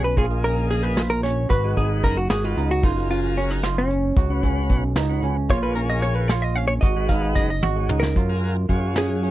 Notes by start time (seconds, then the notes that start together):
Already playing: B1 C#4
0.04 B4
0.16 A#1 A#3 F4 G#4 C#5, kick, closed hi-hat
0.30 A#3 F4 G#4 D#5
0.44 C#4 A#4, closed hi-hat
0.70 G#4, closed hi-hat
0.83 B4
0.97 F4, snare, closed hi-hat
1.10 A#4
1.23 C#4 C#5, snare, closed hi-hat
1.50 G#1 F#4 B4, kick, closed hi-hat
1.64 G#3 D#4 F#4 B4
1.77 G#1 D#4 G#4, kick, closed hi-hat
2.03 F#1 A#4, kick, closed hi-hat
2.17 F#4
2.30 G#1 F#4 G#4, snare, closed hi-hat
2.44 G#3 D#4 F4 F#4 B4
2.57 C#2 D#4, closed hi-hat
2.71 F#4
2.83 F#1 F#3 D#4 F4 G#4 A#4, kick, closed hi-hat
2.96 F#3 F4 G#4 A#4
3.10 C#4 F4, closed hi-hat
3.37 C#4, closed hi-hat
3.51 D#4
3.63 F4, snare, closed hi-hat
3.78 C#4
3.90 C#4, closed hi-hat
4.16 C#2 F#4, kick, closed hi-hat
4.29 C#3 C#4 F#4 B4
4.43 C#2 C#4, kick, closed hi-hat
4.70 B1, kick, closed hi-hat
4.96 C#2 D#4, snare, closed hi-hat
5.09 C#3 C#4 F#4 B4
5.22 C#2 C#4, closed hi-hat
5.49 A#1 A#3 F4 G#4 C#5, kick, closed hi-hat
5.62 A#3 F4 G#4 B4 C#5
5.75 C#4 A#4, closed hi-hat
5.90 D#5
6.02 C#5, closed hi-hat
6.15 B4
6.28 F4 C#5, snare, closed hi-hat
6.42 D#5
6.55 C#4 F5, closed hi-hat
6.68 C#5
6.81 G#1 F#4 D#5, kick, closed hi-hat
6.96 G#3 D#4 F#4 B4
7.09 G#1 D#4 F5, kick, snare, closed hi-hat
7.35 F#1 D#5, kick, snare, closed hi-hat
7.50 D#5
7.63 G#1 F#4, high tom
7.76 G#3 D#4 F#4 C#5
7.89 C#2 D#4, mid tom
8.00 A#4, snare
8.16 F#2 F4, kick, closed hi-hat
8.29 F#3 F4 G#4 A#4
8.43 closed hi-hat
8.69 F#2 F#3 F4 G#4 C#5, kick, closed hi-hat
8.96 C#4 G#4, snare, closed hi-hat
9.23 C#4, closed hi-hat